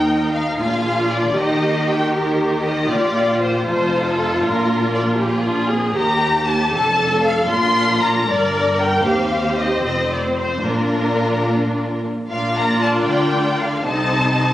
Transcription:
0.00 0.56 D#2 soft
0.00 0.56 D#4 soft
0.00 0.56 A#4 soft
0.00 0.34 G5 medium
0.33 0.58 F5 medium
0.59 1.35 A#1 soft
0.59 1.36 A#2 soft
0.59 1.36 D4 soft
0.59 1.37 F4 soft
0.59 1.37 G#4 soft
0.59 1.10 F5 medium
1.12 1.37 D5 soft
1.37 2.87 D#2 soft
1.37 2.88 D#3 soft
1.37 2.15 D#4 soft
1.37 2.87 G4 soft
1.37 2.13 G4 soft
1.37 1.89 D#5 medium
1.89 2.15 G5 medium
2.14 3.64 G4 soft
2.14 2.64 A#4 medium
2.65 2.91 D#5 medium
2.89 3.67 A#1 soft
2.89 3.67 A#2 soft
2.89 3.66 F4 soft
2.89 3.41 D5 medium
3.42 3.67 C5 medium
3.67 4.41 F1 soft
3.67 4.41 F2 soft
3.67 4.43 D#4 soft
3.67 5.16 F4 medium
3.67 4.42 A4 soft
3.67 4.17 C5 medium
4.18 4.42 A4 medium
4.43 5.96 A#1 soft
4.43 5.96 A#2 soft
4.43 5.19 D4 soft
4.43 5.19 A#4 soft
4.43 4.94 A#4 medium
4.94 5.02 D5 medium
5.19 5.45 F4 medium
5.19 5.44 G4 medium
5.19 5.96 G#4 soft
5.45 5.70 D4 medium
5.45 5.70 F4 medium
5.68 5.95 C4 soft
5.68 5.96 G#4 medium
5.94 6.71 D#2 medium
5.94 6.71 A#3 soft
5.94 6.71 G4 medium
5.94 6.74 G4 medium
5.94 6.44 A#5 medium
6.47 6.72 A5 medium
6.73 7.50 F1 medium
6.73 7.50 F2 medium
6.73 9.01 D4 medium
6.73 7.50 A4 medium
6.73 7.23 A5 medium
7.26 7.50 F5 medium
7.49 8.27 A#1 medium
7.49 8.27 A#2 medium
7.49 8.26 F4 medium
7.49 8.26 A#4 medium
7.49 8.00 C6 medium
8.02 8.27 A#5 medium
8.26 9.05 G1 medium
8.26 9.05 G2 medium
8.26 9.03 A#4 medium
8.26 9.04 A#4 medium
8.26 8.79 D5 medium
8.80 9.06 G5 medium
9.04 9.84 D#2 medium
9.04 9.83 C4 medium
9.04 9.82 G4 medium
9.04 10.64 C5 medium
9.04 9.58 F5 medium
9.59 9.83 D#5 medium
9.83 10.63 F1 soft
9.83 10.63 F2 medium
9.83 10.63 C4 soft
9.83 10.65 C4 medium
9.83 10.10 D#5 medium
10.12 10.20 D5 medium
10.39 10.65 C5 medium
10.64 12.08 A#1 soft
10.64 12.08 A#2 soft
10.64 12.05 D4 soft
10.64 11.86 D4 soft
10.64 12.08 F4 soft
10.64 12.02 A#4 medium
12.29 13.03 A#1 soft
12.29 13.04 A#2 soft
12.29 13.82 D4 medium
12.29 13.82 F4 soft
12.29 13.82 A#4 soft
12.29 13.82 D5 medium
12.29 12.54 F5 medium
12.57 12.82 A#5 medium
12.81 12.89 A5 medium
13.07 13.85 D2 soft
13.07 13.86 D3 soft
13.07 13.58 G5 medium
13.59 13.85 F5 medium
13.85 14.54 C2 soft
13.85 14.54 C3 soft
13.85 14.54 C4 soft
13.85 14.54 D#4 medium
13.85 14.54 A4 soft
13.85 14.54 D#5 medium
13.85 14.54 A5 medium

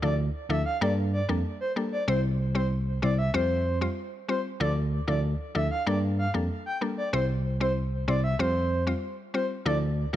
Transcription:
0.02 0.28 D2 loud
0.02 0.23 F3 medium
0.02 0.23 D4 medium
0.02 0.23 E4 medium
0.02 0.24 A4 medium
0.02 0.14 D5 medium
0.50 0.63 D2 medium
0.50 0.71 F3 medium
0.50 0.71 D4 medium
0.50 0.71 E4 medium
0.50 0.71 A4 medium
0.50 0.62 E5 medium
0.66 0.77 F5 medium
0.81 1.20 G2 loud
0.81 1.25 G3 loud
0.81 1.25 A#3 medium
0.81 1.25 D4 medium
0.81 1.25 A4 loud
0.81 0.93 D5 medium
1.13 1.25 D5 medium
1.29 1.42 F2 medium
1.29 1.50 G3 medium
1.29 1.50 A#3 medium
1.29 1.50 D4 medium
1.29 1.50 A4 medium
1.61 1.72 C5 medium
1.76 1.97 G3 medium
1.76 1.97 A#3 medium
1.76 1.97 D4 medium
1.76 1.97 A4 medium
1.92 2.04 D5 medium
2.08 2.99 C2 loud
2.08 2.29 G3 medium
2.08 2.29 C4 medium
2.08 2.29 E4 medium
2.08 2.19 C5 loud
2.08 2.29 C5 loud
2.55 2.76 G3 medium
2.55 2.76 C4 medium
2.55 2.76 E4 medium
2.55 2.67 C5 medium
2.55 2.76 C5 medium
3.02 3.28 C2 medium
3.02 3.23 G3 medium
3.02 3.23 C4 medium
3.02 3.24 E4 medium
3.02 3.24 C5 medium
3.02 3.14 D5 medium
3.18 3.30 E5 medium
3.34 3.86 F2 loud
3.34 3.78 G3 loud
3.34 3.78 C4 medium
3.34 3.78 F4 medium
3.34 3.79 C5 loud
3.34 3.78 C5 loud
3.81 4.02 G3 medium
3.81 4.02 C4 medium
3.81 4.02 F4 medium
3.81 4.03 C5 medium
4.28 4.50 G3 medium
4.28 4.50 C4 medium
4.28 4.50 F4 medium
4.28 4.40 C5 medium
4.28 4.50 C5 medium
4.60 4.99 D2 loud
4.60 4.81 F3 loud
4.60 4.81 D4 medium
4.60 4.81 E4 medium
4.60 4.81 A4 loud
4.60 4.72 D5 loud
5.07 5.34 D2 loud
5.07 5.29 F3 medium
5.07 5.29 D4 medium
5.07 5.29 E4 medium
5.07 5.29 A4 medium
5.07 5.20 D5 medium
5.55 5.68 D2 medium
5.55 5.76 F3 medium
5.55 5.76 D4 medium
5.55 5.76 E4 medium
5.55 5.76 A4 medium
5.55 5.67 E5 medium
5.71 5.83 F5 medium
5.86 6.26 G2 loud
5.86 6.30 G3 loud
5.86 6.30 A#3 medium
5.86 6.30 D4 medium
5.86 6.31 A4 loud
5.86 5.98 D5 medium
6.19 6.30 F5 medium
6.34 6.47 F2 medium
6.34 6.55 G3 medium
6.34 6.55 A#3 medium
6.34 6.55 D4 medium
6.34 6.55 A4 medium
6.66 6.77 G5 medium
6.81 7.02 G3 medium
6.81 7.02 A#3 medium
6.81 7.02 D4 medium
6.81 7.03 A4 medium
6.97 7.09 D5 medium
7.13 8.04 C2 loud
7.13 7.34 G3 medium
7.13 7.34 C4 medium
7.13 7.34 E4 medium
7.13 7.25 C5 loud
7.13 7.34 C5 loud
7.60 7.81 G3 medium
7.60 7.81 C4 medium
7.60 7.82 E4 medium
7.60 7.72 C5 medium
7.60 7.82 C5 medium
8.08 8.34 C2 medium
8.08 8.29 G3 medium
8.08 8.29 C4 medium
8.08 8.29 E4 medium
8.08 8.29 C5 medium
8.08 8.19 D5 medium
8.24 8.35 E5 medium
8.39 8.91 F2 loud
8.39 8.83 G3 loud
8.39 8.83 C4 medium
8.39 8.83 F4 medium
8.39 8.84 C5 loud
8.39 8.83 C5 loud
8.87 9.08 G3 medium
8.87 9.08 C4 medium
8.87 9.08 F4 medium
8.87 9.08 C5 medium
9.34 9.55 G3 medium
9.34 9.55 C4 medium
9.34 9.55 F4 medium
9.34 9.46 C5 medium
9.34 9.55 C5 medium
9.65 10.05 D2 loud
9.65 9.86 F3 medium
9.65 9.87 D4 medium
9.65 9.87 E4 medium
9.65 9.87 A4 loud
9.65 9.77 D5 loud
10.13 10.16 F3 medium

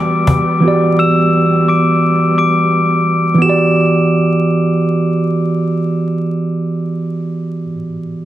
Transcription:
0.00 0.58 E3 medium
0.00 3.38 G3 medium
0.00 0.58 B3 medium
0.00 3.38 B3 medium
0.00 0.60 F#4 medium
0.00 0.60 G4 medium
0.00 0.61 D5 medium
0.00 0.59 D6 medium
0.00 0.60 D7 medium
0.27 cajon bass medium
0.60 3.33 E3 medium
0.60 3.37 B3 medium
0.60 3.38 F#4 medium
0.66 3.39 G4 medium
0.66 3.40 D5 medium
0.99 1.64 E6 medium
0.99 1.65 E7 medium
1.68 2.34 D6 medium
1.68 2.34 D7 medium
2.38 3.38 D6 medium
2.38 3.39 D7 medium
3.34 7.63 E3 medium
3.34 7.65 B3 medium
3.42 7.67 F#4 medium
3.42 7.69 G4 medium
3.42 5.47 E7 medium
3.50 7.71 D5 medium

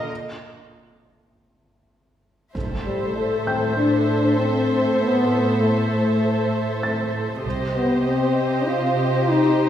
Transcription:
0.00 0.12 D6 soft
2.55 3.12 A1 soft
2.55 7.41 A2 soft
2.55 7.41 A4 soft
2.55 7.41 C5 soft
2.55 7.41 E5 soft
2.55 impact soft
2.84 3.13 G3 soft
3.15 3.77 A3 soft
3.47 5.27 G5 soft
3.47 5.27 G6 soft
3.76 4.37 D4 medium
4.38 4.99 C4 soft
5.00 5.60 B3 soft
5.61 7.14 A3 soft
6.83 8.63 A6 soft
7.44 8.02 C2 soft
7.44 9.69 C3 soft
7.44 9.69 G4 soft
7.44 9.69 C5 soft
7.44 9.69 D#5 soft
7.76 8.04 B3 soft
8.07 8.68 C4 soft
8.67 9.28 F4 medium
9.29 9.69 D#4 soft

